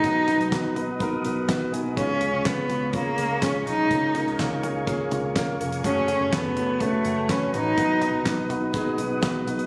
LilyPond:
<<
  \new Staff \with { instrumentName = "Tonewheel organ" } { \time 4/4 \key ces \lydian \tempo 4 = 124 << { ees'''1 | <f'' des'''>1 | aes''1~ | aes''1 |
ees'''1 | } \\ { <ces'' ees'' ges''>1 | <aes' des''>1 | bes'1 | <a' ges''>1 |
<ces'' ees''>1 | } >> }
  \new Staff \with { instrumentName = "Grand piano" } { \time 4/4 \key ces \lydian <ces' ees' ges' ces''>8 <ces' ees' ges' ces''>8 <ces' ees' ges' ces''>8 <ces' ees' ges' ces''>8 <ces' ees' ges' bes'>8 <ces' ees' ges' ces''>8 <ces' ees' ges' ces'' ces'''>8 <ces' ees' ges' ces'' aes''>8 | <aes des' f' aes'>8 <aes des' f' aes'>8 <des' f' aes'>8 <aes des' f' aes'>8 <aes des' f' aes'>8 <aes des' f' aes'>8 <aes des' f' aes'>8 <aes des' f' aes'>8 | <bes des' f' aes'>8 <bes des' f' bes'>8 <bes des' f' bes'>8 <bes des' f' aes'>8 <bes des' f' aes'>8 <bes des' f' aes'>8 <bes des' f' bes'>8 <bes des' f' bes'>8 | <a des' ges' aes'>8 <a des' aes'>8 <a des' ges' a'>8 <a des' ges' a'>8 <a des' ges' ces''>8 <a des' ges' a'>8 <a des' ges' ces''>8 <a des' ges' ces''>8 |
<ces' ees' ges' ces''>8 <ces' ees' ges' ces''>8 <ces' ees' ges' ces''>8 <ces' ees' ges' ces''>8 <ces' ees' ges' aes'>8 <ces' ees' ges' ces''>8 <ces' ees' ges' ces''>8 <ces' ees' ges' ces''>8 | }
  \new Staff \with { instrumentName = "Grand piano" } { \clef bass \time 4/4 \key ces \lydian <ces ges>4. r2 r8 | des4. r2 r8 | des4. r2 r8 | des4. r2 r8 |
<ces ges>4. r2 r8 | }
  \new Staff \with { instrumentName = "Cello" } { \time 4/4 \key ces \lydian ees'4. r2 r8 | des'4 ces'4 bes4 des'8 ees'8~ | ees'4. r2 r8 | des'4 ces'4 a4 des'8 ees'8~ |
ees'4. r2 r8 | }
  \new Staff \with { instrumentName = "Fingered electric bass" } { \clef bass \time 4/4 \key ces \lydian ces,8. ces,16 ces,4. ces,4 ces,8 | des,8. des,16 des,4. des,4 ces,8 | des,8. des,16 des,4. des,4 f,,8 | ges,,8. ges,,16 ges,,4. ges,,4 a,,8 |
ces,8. ces,16 ces,4. ces,4 ces,8 | }
  \new DrumStaff \with { instrumentName = "Drums" } \drummode { \time 4/4 <hh bd>8 <hh tomfh>16 hh16 <hc hh bd sn>8 <hh tomfh>8 <hh bd>8 hh8 <hc hh bd sn>8 hh8 | <hh bd>8 <hh tomfh>8 <hc hh bd sn>8 <hh tomfh>8 <hh bd>8 hh8 <hc hh bd sn>8 hh8 | <hh bd>8 <hh tomfh>16 hh16 <hc hh bd sn>8 <hh tomfh>8 <hh bd>8 <hh tomfh>8 <hc hh bd sn>8 hh16 hh16 | <hh bd>8 <hh tomfh>8 <hc hh bd sn>8 <hh tomfh>8 <hh bd>8 hh8 <hc hh bd sn>8 hh8 |
<hh bd>8 <hh tomfh>8 <hc hh bd sn>8 <hh tomfh>8 <hh bd>8 hh8 <hc hh bd sn>8 hh16 hh16 | }
>>